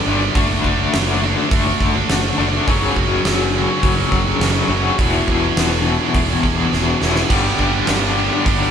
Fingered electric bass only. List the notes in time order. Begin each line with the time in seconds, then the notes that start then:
0.06 G1
0.35 F#1
0.64 F#1
0.94 F#1
1.51 F#1
1.80 F#1
2.10 F#1
2.38 F#1
2.68 F#1
2.97 F#1
3.24 F#1
3.83 F#1
4.12 F#1
4.40 F#1
4.68 F#1
4.99 E1
5.28 E1
5.55 E1
6.14 E1
6.44 E1
6.72 E1
7.01 E1
7.30 G1
7.59 G1
7.88 G1
8.46 G1